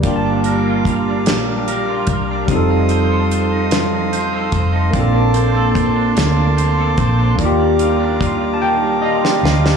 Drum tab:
HH |x-x-x-x-x-x-|x-x-x-x-x-x-|x-x-x-x-x-x-|x-x-x-------|
SD |------o-----|------o-----|------o-----|---------ooo|
BD |o---o-----o-|o---------o-|o---o-----o-|o---o-------|